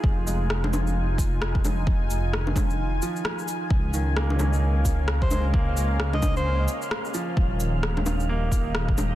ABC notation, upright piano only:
X:1
M:4/4
L:1/16
Q:"Swing 16ths" 1/4=131
K:Fm
V:1 name="Upright piano" clef=bass
z2 A,8 z6 | z4 E,6 F,6- | F,2 E,2 B, D E8 A,2 | B,8 z6 F,2- |
F,2 z6 B,8 |]